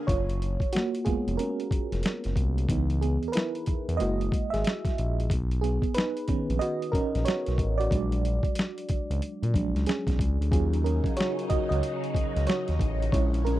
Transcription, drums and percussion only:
0.08 kick, closed hi-hat
0.29 closed hi-hat
0.42 closed hi-hat
0.60 kick, closed hi-hat
0.73 snare, closed hi-hat
0.95 closed hi-hat
1.06 kick, closed hi-hat
1.28 closed hi-hat
1.39 closed hi-hat
1.60 closed hi-hat
1.71 kick, closed hi-hat
1.92 snare, closed hi-hat
2.03 snare, closed hi-hat
2.24 snare, closed hi-hat
2.36 kick, closed hi-hat
2.58 closed hi-hat
2.69 kick, closed hi-hat
2.90 closed hi-hat
3.02 closed hi-hat
3.23 closed hi-hat
3.33 snare, closed hi-hat
3.55 closed hi-hat
3.66 kick, closed hi-hat
3.89 closed hi-hat
4.00 closed hi-hat
4.21 closed hi-hat
4.32 kick, closed hi-hat
4.54 snare, closed hi-hat
4.64 snare, closed hi-hat
4.85 kick, snare, closed hi-hat
4.98 closed hi-hat
5.20 closed hi-hat
5.30 kick, closed hi-hat
5.51 closed hi-hat
5.64 closed hi-hat
5.82 kick, closed hi-hat
5.94 snare, closed hi-hat
6.17 closed hi-hat
6.28 kick, closed hi-hat
6.50 closed hi-hat
6.61 closed hi-hat
6.82 closed hi-hat
6.93 kick, closed hi-hat
7.15 snare, closed hi-hat
7.26 snare, closed hi-hat
7.46 snare, closed hi-hat
7.58 kick, closed hi-hat
7.81 closed hi-hat
7.91 kick, closed hi-hat
8.12 closed hi-hat
8.25 closed hi-hat
8.43 kick, closed hi-hat
8.55 snare, closed hi-hat
8.78 closed hi-hat
8.89 kick, closed hi-hat
9.11 closed hi-hat
9.22 closed hi-hat
9.43 closed hi-hat
9.54 kick, closed hi-hat
9.76 snare, closed hi-hat
9.86 snare, closed hi-hat
10.07 kick, snare, closed hi-hat
10.19 kick, closed hi-hat
10.42 closed hi-hat
10.52 kick, closed hi-hat
10.73 closed hi-hat
10.86 closed hi-hat
11.04 kick, closed hi-hat
11.17 snare, closed hi-hat
11.39 closed hi-hat
11.50 kick, closed hi-hat
11.72 closed hi-hat
11.83 closed hi-hat
12.04 closed hi-hat
12.15 kick, closed hi-hat
12.36 snare, closed hi-hat
12.47 snare, closed hi-hat
12.68 snare, closed hi-hat
12.79 kick, closed hi-hat
13.02 closed hi-hat
13.12 kick, closed hi-hat
13.34 closed hi-hat
13.47 closed hi-hat

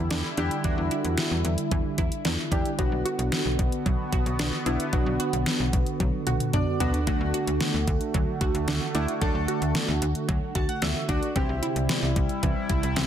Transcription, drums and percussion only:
0.11 snare, closed hi-hat
0.37 closed hi-hat
0.51 closed hi-hat
0.64 kick, closed hi-hat
0.91 closed hi-hat
1.05 closed hi-hat
1.18 snare, closed hi-hat
1.45 closed hi-hat
1.58 closed hi-hat
1.71 kick, closed hi-hat
1.98 kick, closed hi-hat
2.12 closed hi-hat
2.25 snare, closed hi-hat
2.52 kick, closed hi-hat
2.66 closed hi-hat
2.79 kick, closed hi-hat
3.06 closed hi-hat
3.19 closed hi-hat
3.32 snare, closed hi-hat
3.59 kick, closed hi-hat
3.72 closed hi-hat
3.86 kick, closed hi-hat
4.13 kick, closed hi-hat
4.26 closed hi-hat
4.39 snare, closed hi-hat
4.66 closed hi-hat
4.80 closed hi-hat
4.93 kick, closed hi-hat
5.20 closed hi-hat
5.33 closed hi-hat
5.46 snare, closed hi-hat
5.73 kick, closed hi-hat
5.86 closed hi-hat
6.00 kick, closed hi-hat, high tom
6.27 closed hi-hat, mid tom
6.40 closed hi-hat, mid tom
6.53 closed hi-hat, mid tom
6.80 closed hi-hat, floor tom
6.94 closed hi-hat, floor tom
7.07 kick, closed hi-hat
7.34 closed hi-hat
7.47 closed hi-hat
7.61 snare, closed hi-hat
7.88 kick, closed hi-hat
8.01 closed hi-hat
8.14 kick, closed hi-hat
8.41 kick, closed hi-hat
8.55 closed hi-hat
8.68 snare, closed hi-hat
8.95 closed hi-hat
9.08 closed hi-hat
9.22 kick, closed hi-hat
9.48 closed hi-hat
9.62 closed hi-hat
9.75 snare, closed hi-hat
10.02 closed hi-hat
10.15 closed hi-hat
10.29 kick, closed hi-hat
10.55 kick, closed hi-hat
10.69 closed hi-hat
10.82 snare, closed hi-hat
11.09 kick, closed hi-hat
11.23 closed hi-hat
11.36 kick, closed hi-hat
11.63 closed hi-hat
11.76 closed hi-hat
11.89 snare, closed hi-hat
12.16 kick, closed hi-hat
12.29 closed hi-hat
12.43 kick, closed hi-hat
12.70 kick, closed hi-hat
12.83 closed hi-hat
12.96 snare, closed hi-hat

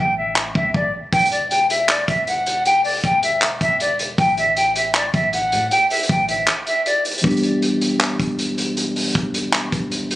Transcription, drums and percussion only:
0.36 clap
0.55 kick
0.74 kick
1.13 kick, closed hi-hat
1.19 closed hi-hat
1.25 closed hi-hat
1.32 closed hi-hat
1.51 closed hi-hat
1.70 closed hi-hat
1.89 clap, closed hi-hat
2.08 kick, closed hi-hat
2.27 closed hi-hat
2.46 closed hi-hat
2.65 closed hi-hat
2.85 open hi-hat
3.04 kick, closed hi-hat
3.23 closed hi-hat
3.42 clap, closed hi-hat
3.61 kick, closed hi-hat
3.80 closed hi-hat
3.99 closed hi-hat
4.18 kick, closed hi-hat
4.37 closed hi-hat
4.57 closed hi-hat
4.76 closed hi-hat
4.95 clap, closed hi-hat
5.14 kick, closed hi-hat
5.33 closed hi-hat
5.52 closed hi-hat
5.71 closed hi-hat
5.90 closed hi-hat, open hi-hat
5.97 closed hi-hat
6.03 closed hi-hat
6.09 kick, closed hi-hat
6.28 closed hi-hat
6.48 clap, closed hi-hat
6.67 closed hi-hat
6.86 closed hi-hat
7.05 closed hi-hat
7.11 closed hi-hat
7.18 closed hi-hat
7.24 kick, closed hi-hat
7.30 closed hi-hat
7.37 closed hi-hat
7.43 closed hi-hat
7.62 closed hi-hat
7.81 closed hi-hat
8.00 clap, closed hi-hat
8.20 kick, closed hi-hat
8.39 closed hi-hat
8.58 closed hi-hat
8.77 closed hi-hat
8.96 open hi-hat
9.15 kick, closed hi-hat
9.34 closed hi-hat
9.53 clap, closed hi-hat
9.72 kick, closed hi-hat
9.92 closed hi-hat
10.11 closed hi-hat

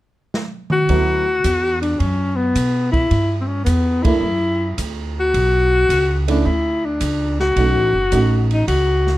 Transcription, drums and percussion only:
0.34 snare
0.70 mid tom
0.89 kick, ride
1.44 kick, hi-hat pedal, ride
1.83 ride
2.00 kick, ride
2.55 kick, hi-hat pedal, ride
2.93 kick, ride
3.11 kick, ride
3.66 kick, hi-hat pedal, ride
4.05 kick, ride
4.78 kick, hi-hat pedal, ride
5.34 kick, ride
5.90 kick, hi-hat pedal, ride
6.28 ride
6.46 kick
7.01 kick, hi-hat pedal, ride
7.40 snare
7.56 kick, ride
8.12 kick, hi-hat pedal, ride
8.51 ride
8.68 kick, ride
9.07 snare

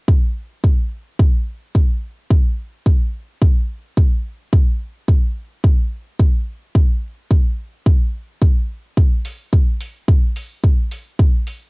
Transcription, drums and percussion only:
0.08 kick
0.64 kick
1.19 kick
1.75 kick
2.30 kick
2.86 kick
3.42 kick
3.97 kick
4.53 kick
5.08 kick
5.64 kick
6.19 kick
6.75 kick
7.31 kick
7.86 kick
8.42 kick
8.97 kick
9.25 open hi-hat
9.53 kick
9.80 open hi-hat
10.08 kick
10.36 open hi-hat
10.64 kick
10.91 open hi-hat
11.19 kick
11.47 open hi-hat

